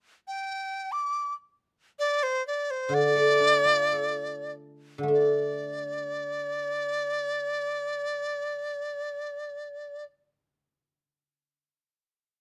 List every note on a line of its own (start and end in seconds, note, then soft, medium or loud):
0.28 0.94 G5 medium
0.92 1.34 D6 medium
1.99 2.25 D5 medium
2.23 2.45 C5 medium
2.47 2.72 D5 medium
2.71 2.96 C5 medium
2.89 4.97 D3 medium
2.94 4.52 D5 loud
3.16 5.02 A3 soft
3.40 5.07 D4 soft
3.65 6.05 F4 soft
3.93 6.36 A4 soft
4.98 11.61 D3 medium
5.03 10.69 A3 medium
5.08 10.03 D4 soft
5.13 10.05 D5 medium